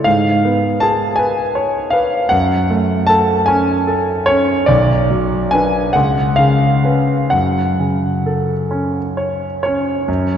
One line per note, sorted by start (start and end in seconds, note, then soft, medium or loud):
0.04 2.29 G#2 soft
0.04 0.79 F5 medium
0.45 1.03 B3 soft
0.80 1.41 G#4 soft
0.80 1.17 A5 medium
1.16 1.79 B4 soft
1.16 1.93 G#5 medium
1.55 2.17 C#5 soft
1.90 2.32 B4 soft
1.90 2.30 F5 medium
2.29 4.65 F#2 medium
2.29 3.07 F#5 medium
2.70 3.32 A3 soft
3.07 3.72 A4 soft
3.07 3.47 A5 medium
3.46 4.12 C#4 soft
3.46 4.27 G#5 medium
3.87 4.52 A4 soft
4.26 4.69 C#4 soft
4.26 4.68 C#5 medium
4.66 5.90 B1 medium
4.66 5.51 D5 medium
5.10 5.78 F#3 soft
5.51 5.91 D4 soft
5.51 5.91 B4 soft
5.51 5.94 G#5 medium
5.93 7.29 C#2 soft
5.93 6.37 F#5 medium
6.36 7.13 C#3 soft
6.36 7.31 F5 medium
6.84 7.28 C#4 soft
6.84 7.29 B4 soft
7.30 10.04 F#2 soft
7.30 9.62 F#5 medium
7.79 8.52 C#3 soft
8.26 8.99 A4 soft
8.71 9.44 C#4 soft
9.17 9.61 C#5 soft
9.63 10.09 C#4 soft
9.63 10.37 C#5 medium
10.08 10.37 F#2 medium